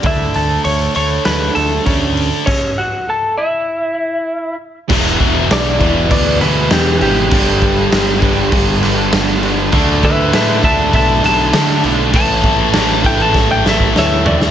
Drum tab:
CC |----------------|x---------------|x-x-x-x-x-x-x-x-|x-x-x-x-x-x-x-x-|
HH |o-o-o-o-o-o-o-o-|----------------|----------------|----------------|
SD |--------o-------|----------------|----o-----o-o---|----o-----o-o---|
FT |----------------|----------------|----------------|----------------|
BD |o-----------o---|o---------------|o-o---o-o-------|o-o---o-o-------|

CC |x-x-x-x-x-x-x-x-|x-x-x-x---------|
HH |----------------|----------------|
SD |----o-----o-o---|----o---o-o-o--o|
FT |----------------|--------------o-|
BD |o-o---o-o-------|o-o---o-o--o----|